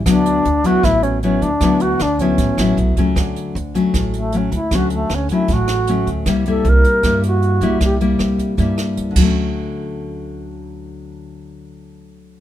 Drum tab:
CC |--------|--------|--------|--------|
HH |xxxxxxxx|xxxxxxxx|xxxxxxxx|xxxxxxxx|
SD |r---r---|r-r--r--|r---r---|r-r--r--|
BD |o--oo--o|o--oo--o|o--oo--o|o--oo--o|

CC |--------|-------x|--------|--------|
HH |xxxxxxxx|xxxxxxx-|--------|--------|
SD |r---r---|r-r--r--|--------|--------|
BD |o--oo--o|o--oo--o|--------|--------|